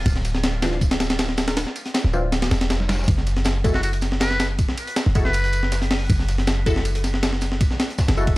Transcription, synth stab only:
0.62 0.79 E3 medium
0.62 0.79 C4 medium
0.62 0.79 D4 medium
0.62 0.79 F4 loud
2.13 2.24 E3 medium
2.13 2.24 C4 medium
2.13 2.24 D4 medium
2.13 2.24 F4 loud
3.64 3.81 G#3 medium
3.64 3.81 E4 medium
3.64 3.81 F#4 medium
3.64 3.81 A4 loud
5.15 5.26 G#3 medium
5.15 5.26 E4 medium
5.15 5.26 F#4 medium
5.15 5.26 A4 loud
6.66 6.83 G#3 medium
6.66 6.83 E4 medium
6.66 6.83 F#4 medium
6.66 6.83 A4 loud
8.17 8.28 G#3 medium
8.17 8.28 E4 medium
8.17 8.28 F#4 medium
8.17 8.28 A4 loud

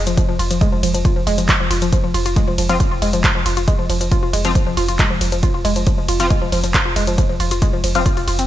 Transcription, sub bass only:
0.07 0.17 F1 medium
0.29 0.39 F1 medium
0.39 0.50 F1 loud
0.50 0.61 F1 medium
0.72 0.82 F1 medium
0.83 0.94 F1 loud
0.94 1.05 F1 medium
1.16 1.26 F1 medium
1.27 1.37 F1 loud
1.38 1.49 F1 medium
1.60 1.70 F1 medium
1.71 1.81 F1 loud
1.82 1.92 F1 medium
2.04 2.14 F1 medium
2.14 2.25 F1 loud
2.26 2.36 F1 medium
2.48 2.58 F1 medium
2.58 2.69 F1 loud
2.70 2.80 F1 medium
2.91 3.01 F1 medium
3.02 3.13 F1 loud
3.13 3.24 F1 medium
3.35 3.45 F1 medium
3.46 3.56 F1 loud
3.57 3.68 F1 medium
3.79 3.89 F1 medium
3.90 4.00 F1 loud
4.01 4.11 F1 medium
4.23 4.33 F1 medium
4.33 4.44 F1 loud
4.45 4.55 F1 medium
4.67 4.77 F1 medium
4.77 4.88 F1 loud
4.89 4.99 F1 medium
5.11 5.20 F1 medium
5.21 5.32 F1 loud
5.32 5.43 F1 medium
5.54 5.64 F1 medium
5.65 5.76 F1 loud
5.76 5.87 F1 medium
5.98 6.08 F1 medium
6.09 6.19 F1 loud
6.20 6.30 F1 medium
6.42 6.52 F1 medium
6.52 6.63 F1 loud
6.64 6.74 F1 medium
6.86 6.96 F1 medium
6.96 7.07 F1 loud
7.08 7.18 F1 medium
7.29 7.40 F1 medium
7.40 7.51 F1 loud
7.51 7.62 F1 medium
7.73 7.83 F1 medium
7.84 7.94 F1 loud
7.95 8.06 F1 medium
8.17 8.27 F1 medium
8.28 8.38 F1 loud
8.39 8.47 F1 medium

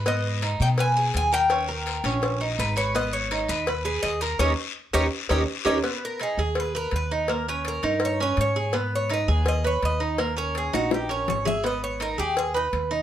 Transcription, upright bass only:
0.00 0.54 G#2 medium
0.60 1.10 B2 loud
1.15 1.99 D#2 medium
2.04 2.55 A#1 medium
2.59 3.43 G#1 loud
3.49 3.99 D#2 loud
4.03 4.37 D#2 medium
4.39 4.53 D#2 medium
4.94 5.07 D#2 loud
5.30 5.44 D#2 loud
5.65 5.79 D#2 medium
6.38 6.89 D#2 medium
6.92 7.78 D#2 medium
7.83 8.34 G2 medium
8.38 9.23 G#2 medium
9.28 9.79 D#2 loud
9.83 10.68 D#2 medium
10.73 11.24 A#1 medium
11.28 12.13 G#1 medium
12.19 12.69 D#2 medium
12.73 13.02 D#2 medium

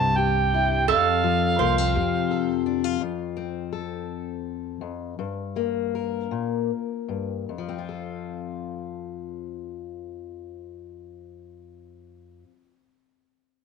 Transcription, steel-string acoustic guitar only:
0.00 0.85 G2 medium
0.00 0.85 G3 medium
0.00 1.59 C4 medium
0.18 0.89 G4 medium
0.54 0.85 E4 medium
0.89 2.99 F2 medium
1.24 5.17 F3 medium
1.60 1.78 A#3 medium
1.78 3.02 C4 soft
1.95 3.01 C3 medium
2.31 2.97 A4 medium
2.66 2.84 D4 medium
2.84 3.02 F4 soft
3.01 4.80 F2 medium
3.37 5.13 C4 soft
3.73 5.13 A4 soft
4.81 5.18 F2 soft
5.19 6.31 G2 medium
5.56 7.49 A#3 soft
5.95 7.45 A#4 soft
6.31 6.70 A#2 soft
7.08 7.49 G2 soft
7.49 12.43 F2 medium
7.58 12.52 F3 soft
7.68 12.62 C4 soft
7.78 12.72 F4 soft
7.89 12.83 A4 soft

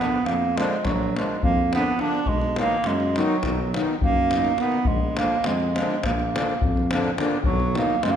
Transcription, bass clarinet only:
0.00 0.27 B3 medium
0.26 0.59 A#3 medium
0.57 0.86 G#3 medium
0.84 1.16 F#3 medium
1.17 1.42 G#3 medium
1.44 1.71 A#3 loud
1.74 2.02 B3 loud
2.01 2.30 D4 loud
2.28 2.59 G#3 loud
2.60 2.89 A#3 loud
2.87 3.19 G#3 medium
3.18 3.45 F#3 loud
3.45 3.82 F#3 medium
4.04 4.62 A#3 loud
4.60 4.89 B3 medium
4.87 5.20 G#3 medium
5.19 5.48 A#3 medium
5.46 6.06 G#3 medium
6.05 7.19 A#3 medium
7.45 7.80 F#3 loud
7.78 8.05 A#3 medium
8.04 8.12 G#3 loud
8.11 8.16 A#3 medium

